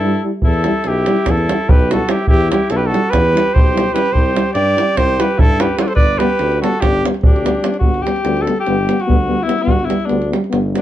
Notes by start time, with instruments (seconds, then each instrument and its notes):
Already playing: tuba G2, alto saxophone E4, flugelhorn A4
0.04 euphonium G3, french horn E4
0.23 euphonium G3, french horn E4
0.42 tuba E2, alto saxophone E4, flugelhorn A4, davul low
0.53 davul high
0.64 euphonium G3, french horn E4, davul high
0.84 tuba B1, alto saxophone E4, davul high
0.88 flugelhorn G4
1.06 euphonium G3, french horn E4, davul high
1.16 davul high
1.26 tuba E2, alto saxophone E4, davul high, davul low
1.30 flugelhorn A4
1.37 davul high
1.47 euphonium G3, french horn E4, davul high
1.69 tuba B1, alto saxophone G4, flugelhorn B4, davul low
1.79 davul high
1.90 euphonium G3, french horn E4, alto saxophone F#4, flugelhorn A4, davul high
2.08 euphonium G3, alto saxophone E4, french horn E4, flugelhorn G4, davul high
2.19 davul high
2.27 tuba E2, alto saxophone E4, flugelhorn G4, davul low
2.41 davul high
2.50 euphonium G3, french horn E4, alto saxophone E4, flugelhorn G4, davul high
2.70 tuba B1, alto saxophone E4, flugelhorn A4, davul high
2.76 alto saxophone G4, flugelhorn B4
2.86 alto saxophone F#4, flugelhorn A4
2.91 euphonium G3, french horn E4, davul high
3.03 davul high
3.10 tuba E2, alto saxophone G4, flugelhorn B4, davul high, davul low
3.25 davul high
3.34 euphonium G3, french horn E4, davul high
3.53 tuba B1, alto saxophone G4, flugelhorn C5, davul low
3.67 davul high
3.75 euphonium G3, french horn E4, davul high
3.92 euphonium G3, french horn E4, alto saxophone G4, flugelhorn B4, davul high
4.06 davul high
4.12 tuba C2, alto saxophone G4, flugelhorn C5, davul low
4.26 davul high
4.34 euphonium G3, french horn E4, davul high
4.54 tuba G2, alto saxophone G4, flugelhorn D5, davul high
4.77 euphonium G3, french horn E4, davul high
4.88 davul high
4.96 tuba C2, alto saxophone G4, flugelhorn C5, davul high, davul low
5.09 davul high
5.18 euphonium G3, french horn E4, alto saxophone G4, flugelhorn B4, davul high
5.38 tuba G2, alto saxophone E4, flugelhorn A4, davul low
5.50 davul high
5.59 euphonium G3, french horn E4, alto saxophone G4, flugelhorn B4, davul high
5.77 euphonium G3, french horn E4, alto saxophone A4, flugelhorn C5, davul high
5.82 alto saxophone B4, flugelhorn D5
5.87 alto saxophone A4, flugelhorn C5, davul high
5.95 tuba G1, alto saxophone B4, flugelhorn D5, davul low
6.18 euphonium G3, french horn B3, alto saxophone G4, flugelhorn B4, davul high
6.30 davul high
6.39 tuba D2, davul high
6.52 davul high
6.60 euphonium G3, french horn B3, alto saxophone F#4, flugelhorn A4, davul high
6.73 davul high
6.81 tuba G1, alto saxophone D4, flugelhorn G4, davul high, davul low
6.94 davul high
7.03 euphonium G3, french horn B3, davul high
7.14 davul high
7.22 tuba D2, alto saxophone D4, flugelhorn G4, davul low
7.36 davul high
7.43 euphonium G3, french horn B3, davul high
7.62 euphonium G3, french horn B3, davul high
7.74 davul high
7.79 tuba G1, euphonium G3, french horn B3, alto saxophone F#4, davul low
7.94 davul high
8.02 euphonium G3, french horn B3, alto saxophone G4
8.07 davul high
8.16 davul high
8.24 tuba D2, euphonium G3, french horn B3, davul high
8.37 davul high
8.41 alto saxophone A4
8.46 euphonium G3, french horn B3, davul high
8.56 alto saxophone G4, davul high
8.66 tuba G1, euphonium G3, french horn B3, davul high
8.87 euphonium G3, french horn B3, davul high
9.00 alto saxophone F#4, davul high
9.07 tuba D2, euphonium G3, french horn B3, davul low
9.28 euphonium G3, french horn B3
9.43 french horn B3, alto saxophone E4
9.47 euphonium G3, davul high
9.59 french horn B3, alto saxophone F#4, davul high
9.67 tuba G1, euphonium G3, davul low
9.79 davul high
9.84 french horn B3, alto saxophone E4
9.89 euphonium G3, davul high
10.00 davul high
10.06 euphonium G3, french horn B3, alto saxophone D4, davul high
10.10 tuba D2
10.22 davul high
10.29 euphonium G3, french horn B3
10.33 davul high
10.44 davul high
10.50 tuba G1, euphonium G3, french horn B3, davul high
10.72 euphonium G3, french horn B3, davul high
10.78 alto saxophone D4